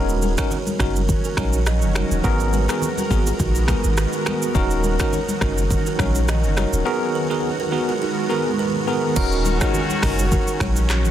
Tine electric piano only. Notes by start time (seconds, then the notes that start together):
Already playing: C#4 D#4 F#4 A#4
0.37 C#4 D#4 F#4 A#4
0.79 C#4 D#4 F#4 A#4
1.37 C#4 D#4 F#4 A#4
1.95 C#4 D#4 F#4 A#4
2.24 B3 F#4 G#4 A#4
2.69 B3 F#4 G#4 A#4
3.10 B3 F#4 G#4 A#4
3.68 B3 F#4 G#4 A#4
4.26 B3 F#4 G#4 A#4
4.55 C#4 D#4 F#4 A#4
4.99 C#4 D#4 F#4 A#4
5.41 C#4 D#4 F#4 A#4
5.99 C#4 D#4 F#4 A#4
6.56 C#4 D#4 F#4 A#4
6.85 B3 F#4 G#4 A#4
7.30 B3 F#4 G#4 A#4
7.72 B3 F#4 G#4 A#4
8.29 B3 F#4 G#4 A#4
8.87 B3 F#4 G#4 A#4
9.16 C#4 D#4 F#4 A#4
9.61 C#4 D#4 F#4 A#4
10.03 C#4 D#4 F#4 A#4